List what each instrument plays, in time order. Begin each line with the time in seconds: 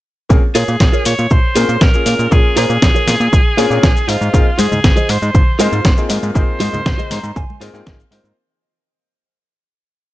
0.29 analog synth bass A#1, grand piano A#3 C4 C#4 F4 G#4, kick, shaker
0.55 analog synth bass A#2, clean electric guitar F4 G#4 A#4 C#5, tenor saxophone G#4, open hi-hat, shaker
0.68 analog synth bass A#2, shaker
0.80 analog synth bass A#1, muted clean electric guitar stroke, kick, snare, shaker
0.93 clean electric guitar F4 G#4 A#4 C#5, shaker
1.05 analog synth bass A#2, tenor saxophone C#5, open hi-hat, shaker
1.18 analog synth bass A#2, shaker
1.30 analog synth bass A#1, tenor saxophone C5, muted clean electric guitar stroke, kick, shaker
1.55 analog synth bass A#2, grand piano A#3 C4 C#4 F4 G#4, clean electric guitar F4 G#4 A#4 C#5, open hi-hat, shaker
1.69 analog synth bass A#2, shaker
1.81 analog synth bass A#1, tenor saxophone A#4, kick, snare, shaker
1.94 grand piano A#3 C#4 F4 G#4, shaker
2.06 analog synth bass A#2, muted clean electric guitar stroke, open hi-hat, shaker
2.19 analog synth bass A#2, muted clean electric guitar stroke, shaker
2.31 analog synth bass A#1, grand piano A#3 C#4 F4 G#4, tenor saxophone G#4, kick, shaker
2.56 analog synth bass A#2, clean electric guitar F4 G#4 A#4 C5, tenor saxophone G#4, open hi-hat, shaker
2.70 analog synth bass A#2, shaker
2.82 analog synth bass A#1, muted clean electric guitar stroke, kick, snare, shaker
2.94 clean electric guitar F4 G#4 A#4 C#5, shaker
3.07 analog synth bass A#2, snare, open hi-hat, shaker
3.20 analog synth bass A#2, shaker
3.32 analog synth bass A#1, muted clean electric guitar stroke, kick, shaker
3.57 analog synth bass A#2, grand piano A#3 C4 C#4 F4 G#4, clean electric guitar F4 G#4 A#4 C#5, open hi-hat, shaker
3.70 analog synth bass A#2, grand piano A#3 C4 C#4 F4 G#4, shaker
3.83 analog synth bass A#1, clean electric guitar G#5, kick, snare, shaker
3.97 shaker
4.07 analog synth bass G#2, clean electric guitar F4 G#4 C5 D#5, tenor saxophone F4, open hi-hat, shaker
4.21 analog synth bass G#2, shaker
4.33 analog synth bass G#1, grand piano A#3 C4 D#4 F4 G#4, kick, shaker
4.58 analog synth bass G#2, clean electric guitar F4 G#4 C5 D#5, tenor saxophone G#4, open hi-hat, high conga, shaker
4.72 analog synth bass G#2, low conga, shaker
4.83 analog synth bass G#1, muted clean electric guitar stroke, kick, snare, low conga, shaker
4.96 clean electric guitar F4 G#4 C5 D#5, muted conga, shaker
5.09 analog synth bass G#2, tenor saxophone C5, open hi-hat, shaker
5.22 analog synth bass G#2, shaker
5.33 analog synth bass G#1, muted clean electric guitar stroke, kick, low conga, shaker
5.59 analog synth bass G#2, grand piano A#3 C4 D#4 F4 G#4, clean electric guitar F4 G#4 C5 F5, tenor saxophone C5, open hi-hat, muted conga, shaker
5.72 analog synth bass G#2, muted conga, shaker
5.85 analog synth bass G#1, kick, snare, shaker
5.97 grand piano A#3 C4 D#4 F4 G#4, shaker
6.09 analog synth bass G#2, muted clean electric guitar stroke, open hi-hat, shaker
6.22 analog synth bass G#2, muted clean electric guitar stroke, shaker
6.34 analog synth bass G#1, grand piano A#3 C4 D#4 F4 G#4, tenor saxophone C5, kick, shaker
6.60 analog synth bass G#2, clean electric guitar F4 G#4 C5 D#5, open hi-hat, high conga, shaker
6.73 analog synth bass G#2, low conga, shaker
6.85 analog synth bass G#1, muted clean electric guitar stroke, kick, snare, low conga, shaker
6.98 clean electric guitar F4 G#4 C5 D#5, muted conga, shaker
7.11 analog synth bass G#2, clean electric guitar A#5, snare, open hi-hat, shaker
7.23 analog synth bass G#2, shaker
7.35 analog synth bass G#1, clean electric guitar G#5, muted clean electric guitar stroke, kick, low conga, shaker
7.50 high conga
7.60 analog synth bass G#2, grand piano A#3 C4 D#4 F4 G#4, clean electric guitar F4 G#4 C5 D#5, open hi-hat, shaker
7.74 analog synth bass G#2, grand piano A#3 C4 D#4 F4 G#4, clean electric guitar G5, shaker
7.86 analog synth bass G#1, grand piano A#3 C4 D#4, clean electric guitar F5, kick, snare, shaker
8.00 shaker
8.11 analog synth bass G#2, grand piano A#3 C4 D#4 F4 C5, clean electric guitar D#5, muted clean electric guitar stroke, open hi-hat, muted conga, shaker
8.24 analog synth bass G#2, shaker